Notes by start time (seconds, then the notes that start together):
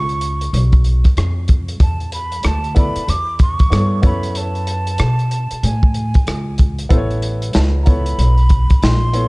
Already playing: C#2 C#6
0.09 closed hi-hat
0.21 closed hi-hat
0.41 closed hi-hat
0.53 B1, closed hi-hat
0.72 kick, closed hi-hat
0.84 closed hi-hat
1.04 muted upright bass stroke, kick, cross-stick, closed hi-hat
1.17 F2, cross-stick, closed hi-hat
1.48 kick, closed hi-hat
1.68 closed hi-hat
1.80 E2 A5, kick, closed hi-hat
2.00 closed hi-hat
2.12 B5, closed hi-hat
2.32 closed hi-hat
2.43 D2 A5, cross-stick, closed hi-hat
2.64 closed hi-hat
2.75 B3 E4 A4 D5 B5, kick, closed hi-hat
2.96 muted upright bass stroke, closed hi-hat
3.08 E2 D6, closed hi-hat
3.39 C#6, kick, closed hi-hat
3.59 kick, closed hi-hat
3.70 G2 B3 E4 A4 C#5, cross-stick, closed hi-hat
4.02 F#2 B3 E4 A4 C#5 B5, kick, closed hi-hat
4.23 closed hi-hat
4.35 A5, closed hi-hat
4.55 closed hi-hat
4.67 closed hi-hat
4.87 closed hi-hat
4.98 B2, cross-stick, closed hi-hat
5.19 closed hi-hat
5.31 closed hi-hat
5.51 muted upright bass stroke, closed hi-hat
5.63 A2 G#5, closed hi-hat
5.83 kick
5.94 closed hi-hat
6.14 muted upright bass stroke, kick, closed hi-hat
6.27 C#2, cross-stick, closed hi-hat
6.58 kick, closed hi-hat
6.79 closed hi-hat
6.89 A1 B3 E4 A4 C5, kick, closed hi-hat
6.98 C#5
7.11 closed hi-hat
7.22 closed hi-hat
7.42 closed hi-hat
7.53 C#2 A5, snare, closed hi-hat
7.83 B3 E4 A4 A#5, closed hi-hat
7.87 C#5 B5, kick
8.06 closed hi-hat
8.18 B1, closed hi-hat
8.38 closed hi-hat
8.49 kick, closed hi-hat
8.70 kick, closed hi-hat
8.82 A#1 C6, snare, closed hi-hat
9.13 B3 E4 A4 C#5, closed hi-hat